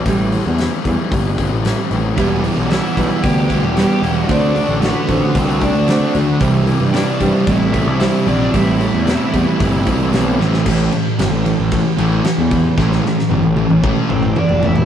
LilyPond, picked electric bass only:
\new Staff \with { instrumentName = "Picked electric bass" } { \clef bass \time 4/4 \key a \dorian \tempo 4 = 113 a,,8. e,8 r16 e,16 r16 g,,8. a,,8 r16 a,,8 | e,,8. b,,8 r16 b,,16 r16 d,8. e,,8 r16 e,,8 | d,8. a,,8 r16 a,,16 r16 c,8. d,8 r16 d,8 | c,8. g,8 r16 g,16 r16 a,,8. c,8 r16 ais,,8 |
a,,8. e,8 r16 e,16 r16 g,,8 c,8 b,,8 a,,8 | a,,8 r8 g,,16 a,,8 a,,8 r16 a,,8 r16 e,8. | a,,8 r8 g,,16 a,,8 a,,8 r16 a,,8 r16 f,,8. | }